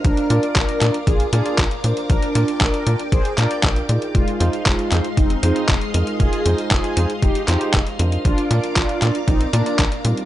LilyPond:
<<
  \new Staff \with { instrumentName = "String machine" } { \time 4/4 \key bes \mixolydian \tempo 4 = 117 << { <bes' d'' d'''>1~ | <bes' d'' d'''>1 | <aes ees'' c'''>1~ | <aes ees'' c'''>1 |
<bes' d'' d'''>1 | } \\ { f''1 | g''1 | f''1~ | f''1~ |
f''1 | } >> }
  \new Staff \with { instrumentName = "Analog polysynth" } { \time 4/4 \key bes \mixolydian <d' bes'>4 <d' bes'>4 <f' aes'>8 <f' aes'>8 r4 | <d' bes'>4 <d' bes'>4 <aes' c''>8 <bes' d''>8 r4 | <aes f'>4 <aes f'>4 <c' ees'>8 <c' ees'>8 r4 | <f' aes'>4 <f' aes'>4 <ees' g'>8 <ees' g'>8 r4 |
<d' f'>4 <d' f'>4 <c' ees'>8 <bes d'>8 r4 | }
  \new Staff \with { instrumentName = "Tine electric piano" } { \time 4/4 \key bes \mixolydian <d' f' bes' c''>8 <d' f' bes' d''>4 <d' f' bes' d''>16 r8. <d' f' bes' d''>16 <d' f' bes' d''>16 r8 <d' f' bes' c''>8~ | <d' f' bes' c''>8 <d' f' bes' d''>4 <d' f' bes' d''>16 r8. <d' f' bes' f''>4 <ees' f' aes' d''>8~ | <ees' f' aes' d''>8 <ees' f' aes' c''>4 <ees' f' aes' c''>16 r8. <ees' f' aes' c''>16 <ees' f' aes' c''>16 r8 <ees' f' aes' bes'>8~ | <ees' f' aes' bes'>8 <ees' f' aes' c''>4 <ees' f' aes' c''>16 r8. <ees' f' aes' c''>16 <ees' f' aes' c''>16 r8 <d' f' bes' c''>8~ |
<d' f' bes' c''>8 <d' f' bes' d''>4 <d' f' bes' d''>16 r8. <d' f' bes' d''>16 <d' f' bes' d''>16 r8 <g c' ees' f'>8 | }
  \new Staff \with { instrumentName = "Analog synth bass" } { \clef bass \time 4/4 \key bes \mixolydian bes,,8 bes,8 bes,,8 bes,8 bes,,8 bes,8 bes,,8 bes,8 | bes,,8 bes,8 bes,,8 bes,8 bes,,8 bes,8 bes,,8 bes,8 | f,,8 f,8 f,,8 f,8 f,,8 f,8 f,,8 f,8 | f,,8 f,8 f,,8 f,8 f,,8 f,8 f,,8 f,8 |
bes,,8 bes,8 bes,,8 bes,8 bes,,8 bes,8 bes,,8 bes,8 | }
  \new DrumStaff \with { instrumentName = "Drums" } \drummode { \time 4/4 <hh bd>16 hh16 hh16 hh16 <hc hh bd>16 hh16 <hc hh>16 hh16 <hh bd>16 hh16 hh16 hh16 <hc hh bd>16 hh16 hh16 hh16 | <hh bd>16 hh16 hh16 hh16 <hc hh bd>16 hh16 hh16 hh16 <hh bd>16 hh16 <hc hh>16 hh16 <hc hh bd>16 hh16 hh16 hh16 | <hh bd>16 hh16 hh16 hh16 <hc hh bd>16 hh16 <hc hh>16 hh16 <hh bd>16 hh16 hh16 hh16 <hc hh bd>16 hh16 hh16 hh16 | <hh bd>16 hh16 hh16 hh16 <hc hh bd>16 hh16 hh16 hh16 <hh bd>16 hh16 <hc hh>16 hh16 <hc hh bd>16 hh16 hh16 hh16 |
<hh bd>16 hh16 hh16 hh16 <hc hh bd>16 hh16 <hc hh>16 hh16 <hh bd>16 hh16 hh16 hh16 <hc hh bd>16 hh16 hh16 hh16 | }
>>